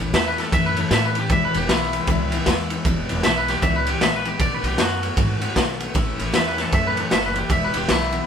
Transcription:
0.00 A1 A3 C#4 E4
0.13 E2 E3 A3 C#4 E4 E5, snare, ride
0.28 B4
0.38 A3 C#4 E4 A4, snare, ride
0.52 F#2 A2 E3 A3 C#4 E4 E5, kick, ride
0.66 B4
0.77 A3 C#4 E4 A4, ride
0.91 A2 E3 A3 C#4 E4 E5, snare, ride
1.05 B4
1.15 A3 C#4 E4, ride
1.20 G4
1.29 E1 E2 B2 E3 G#3 B3 E4 E5, kick, ride
1.45 B4
1.54 E1 E3 G#3 B3 E4 G4, ride
1.69 B1 E3 G#3 E4, snare, ride
1.73 B3 E4
1.93 G#3 B3 E4, ride
1.97 E3
2.07 C#2 E2 B2 E3 G#3 B3 E4, kick, ride
2.32 E3 G#3 B3 E4, ride
2.46 E2 E3 G#3 B3, kick, snare, ride
2.51 E4
2.70 E3 G#3 B3 E4, ride
2.85 E1 E2 B2 E3 G#3 B3 E4, kick, ride
3.09 E1 E3 G#3 B3 E4, ride
3.23 B1 E3 G#3 B3 E4 E5, snare, ride
3.38 B4
3.48 E3 G#3 B3 E4 G4, snare, ride
3.62 C#2 E2 B2 E3 G#3 B3 E4 E5, kick, ride
3.76 B4
3.87 E3 G#3 B3 E4 G4, ride
4.00 A#1 E3 G#3 B3 E4 E5, snare, ride
4.16 B4
4.25 E3 G#3 B3 E4 G4, ride
4.39 B1 B2 D#3 A3 B3 F#4 D5, kick, ride
4.55 B4
4.63 B1 B3 F#4, ride
4.67 A3 G4
4.78 F#2 D#3 A3 B3 F#4, snare, ride
5.03 A3 B3 F#4, ride
5.16 G#2 B2 D#3 A3 B3 F#4, kick, ride
5.41 A3 B3 F#4, ride
5.56 B1 D#3 A3 B3 F#4, kick, snare, ride
5.80 A3 B3 F#4, ride
5.94 A1 A2 E3 A3 C#4 E4, kick, ride
6.18 A1 A3 C#4 E4, ride
6.32 E2 E3 A3 C#4 E4 E5, snare, ride
6.48 B4
6.57 A3 C#4 E4, snare, ride
6.62 A4
6.72 F#2 A2 E3 A3 C#4 E4 E5, kick, ride
6.87 B4
6.96 A3 C#4 E4, ride
7.00 A4
7.10 F#1 E3 A3 C#4 E4 E5, snare, ride
7.26 B4
7.35 A3 C#4 E4 G4, ride
7.49 E1 E2 B2 E3 G#3 B3 E4 E5, kick, ride
7.64 B4
7.73 E1 E3 G#3 B3 E4, ride
7.77 G4
7.88 B1 E3 G#3 B3 E4, snare, ride
8.11 E3 G#3 B3 E4, ride

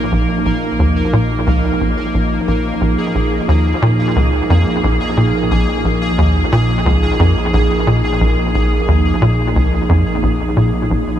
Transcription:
Already playing: A#1 F3 A#3 D#4 G#4 A#4 C#5
0.12 A#1
0.46 A#1
0.79 D#2
1.13 A#2
1.47 C#2
1.81 A#1
2.14 A#1
2.48 A#1
2.81 A#1 G#4
3.15 A#1
3.48 D#2
3.82 A#2
4.16 C#2
4.50 F2
4.84 A#1
5.17 A#2
5.51 A#1
5.85 A#1
6.18 D#2
6.52 A#2
6.86 C#2
7.19 F2
7.53 A#1
7.87 A#2
8.21 A#1
8.55 A#1
8.88 D#2
9.22 A#2
9.56 C#2
9.89 F2
10.23 A#1
10.57 A#2
10.91 A#1

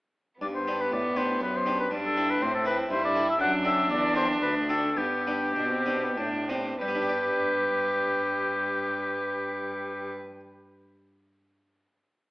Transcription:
0.40 G2 B3 D5
0.55 C5
0.67 B3 D4 G4
0.81 B4
0.92 A2 D5
1.16 B3 D4 G4 C5
1.40 F#2 B4
1.56 C5
1.66 B3 D4 G4
1.80 B4
1.91 G2 D4
2.05 A4
2.17 C4 E4 A4
2.30 B4
2.41 A2 C4 C5
2.55 A4
2.65 C4 E4 A4 B4
2.90 G2 E4 C5
3.05 D5
3.15 C4 E4 A4
3.30 E5
3.40 F#2 D4 F#5
3.65 C4 D4 A4 E5
3.90 E2 D5
4.15 C4 D4 A4 C5
4.42 D2 B4
4.69 C4 D4 F#4 A4
4.96 G2 B3 G4
5.27 B3 D4 G4
5.54 B2 D4
5.69 C4
5.86 B3 D4 G4
6.03 B3
6.17 A2 D4
6.49 B3 C4 D4 G4
6.81 G2 G3 G4 B4
6.88 B3
6.95 D4
7.02 G4
7.09 D5

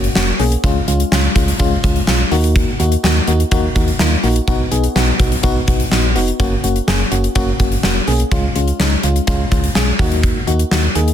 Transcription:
0.04 closed hi-hat
0.15 F1 A#3 C#4 F#4, snare
0.39 B1 A#3 C#4 G#4, open hi-hat
0.52 closed hi-hat
0.64 C#2 G#3 C#4 F4, kick, closed hi-hat
0.88 C#2 G#3 C#4 F4, closed hi-hat
1.00 closed hi-hat
1.12 C#2 G#3 C#4 F4, snare
1.36 C#2 G#3 C#4 F4, kick, closed hi-hat
1.48 closed hi-hat
1.59 C#2 G#3 C#4 F4, kick, closed hi-hat
1.84 C#2 G#3 C#4 F4, kick, closed hi-hat
1.96 closed hi-hat
2.07 B1 G#3 C#4 F4, snare
2.32 D#2 A#3 D#4 F#4, open hi-hat
2.44 closed hi-hat
2.56 kick, closed hi-hat
2.80 D#2 A#3 D#4 F#4, closed hi-hat
2.92 closed hi-hat
3.04 D#2 A#3 D#4 F#4, snare
3.27 D#2 A#3 D#4 F#4, closed hi-hat
3.40 closed hi-hat
3.51 D#2 A#3 D#4 F#4, kick, closed hi-hat
3.75 D#2 A#3 D#4 F#4, kick, closed hi-hat
3.88 closed hi-hat
3.99 D#2 A#3 D#4 F4, snare
4.23 A#1 A#3 D#4 F#4, open hi-hat
4.36 closed hi-hat
4.48 B1 B3 D#4 F#4, kick, closed hi-hat
4.71 B1 B3 D#4 G#4, closed hi-hat
4.84 closed hi-hat
4.96 B1 B3 D#4 F#4, snare
5.19 B1 B3 D#4 F#4, kick, closed hi-hat
5.32 closed hi-hat
5.43 B1 B3 D#4 F#4, kick, closed hi-hat
5.68 B1 B3 D#4 F#4, kick, closed hi-hat
5.80 closed hi-hat
5.92 A#1 B3 D#4 F#4, snare
6.16 F1 B3 D#4 F#4, open hi-hat
6.28 closed hi-hat
6.40 F#1 A#3 C#4 F#4, kick, closed hi-hat
6.64 F#1 A#3 C#4 F#4, closed hi-hat
6.76 closed hi-hat
6.88 F#1 A#3 C#4 G#4, snare
7.12 F#1 A#3 C#4 F#4, closed hi-hat
7.24 closed hi-hat
7.35 F#1 A#3 C#4 F#4, kick, closed hi-hat
7.60 F#1 A#3 C#4 F#4, kick, closed hi-hat
7.72 closed hi-hat
7.83 F1 A#3 C#4 F#4, snare
8.07 B1 A#3 C#4 G#4, open hi-hat
8.20 closed hi-hat
8.32 C#2 G#3 C#4 F4, kick, closed hi-hat
8.56 C#2 G#3 C#4 F4, closed hi-hat
8.68 closed hi-hat
8.79 C#2 G#3 C#4 D#4, snare
9.03 C#2 G#3 C#4 F4, closed hi-hat
9.16 closed hi-hat
9.27 C#2 G#3 C#4 F4, kick, closed hi-hat
9.51 C#2 G#3 C#4 F4, kick, closed hi-hat
9.64 closed hi-hat
9.75 B1 G#3 C#4 G#4, snare
9.99 D#2 A#3 D#4 F#4, kick, open hi-hat
10.12 closed hi-hat
10.23 kick, closed hi-hat
10.47 D#2 A#3 D#4 F#4, closed hi-hat
10.59 closed hi-hat
10.71 D#2 A#3 D#4 F#4, snare
10.95 D#2 A#3 D#4 G#4, closed hi-hat
11.08 closed hi-hat

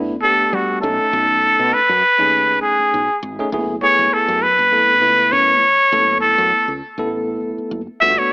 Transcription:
Already playing: G2 A3 B3 D4 E4
0.23 D2 A3 B3 D4 G4 A4
0.53 G3 F#4
0.81 B1 A3 C#4 D#4 A4
1.13 B1
1.59 B2
1.73 B4, muted fretless electric bass stroke
1.89 F#2
2.18 D#2 A3 C#4 D#4 G#4
2.62 B1 G#4
2.79 muted fretless electric bass stroke
2.94 B1
3.23 G#1
3.39 A3 C#4 D#4 G#4
3.52 F#1 A3 B3 E4 G#4
3.82 A3 B3 E4 G#4 C#5
3.99 F#1
4.13 A4, muted fretless electric bass stroke
4.28 F#2
4.42 B4
4.59 F#1
4.72 A3 B3 E4 A4
5.01 C#2 A3 B3 E4 B4
5.32 F#2 C#5
5.62 A1
5.92 F#1 A3 B3 E4 A4
6.21 A4
6.38 F#2
6.52 muted fretless electric bass stroke
6.68 C#2
6.98 A1 A3 B3 E4 A4
7.42 F#1
7.58 muted fretless electric bass stroke
7.71 F#1
8.01 G1 A3 B3 D4 F#4 E5
8.18 C#5

